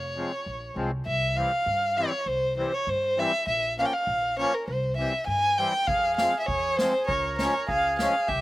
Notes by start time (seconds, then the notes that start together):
Already playing: F1 C#5
0.16 F3 G#3 C4
0.46 A#1
0.75 C2 F3 G#3 C4
1.06 C2 E5
1.36 E3 G3 C4 F5
1.66 G2
1.97 E3 G3 C4 C#5
2.26 C2 C5
2.57 E3 G3 C4 C5
2.74 C#5
2.87 G2 C5
3.16 E3 G3 C4 E5
3.47 A#1 E5
3.78 F3 A#3 C#4 F5
3.85 G5
3.93 F5
4.07 A#1
4.37 F3 A#3 C#4 C#5
4.54 A#4
4.68 C2 C5
4.97 E3 G3 C4 E5
5.27 G2 G#5
5.57 E3 G3 C4 G5
5.87 F2 G#4 F5, kick
6.16 F3 G#3 C4 F5, snare
6.39 E5
6.47 E2 C#5, kick
6.77 F3 G#3 C4 C5, snare
7.07 C#2 A#4 C#5, kick
7.38 F3 G#3 C#4 C#5, snare
7.67 C#2 G#4 F5, kick
7.99 F3 G#3 C#4 F5, snare
8.27 C2 G4 E5, kick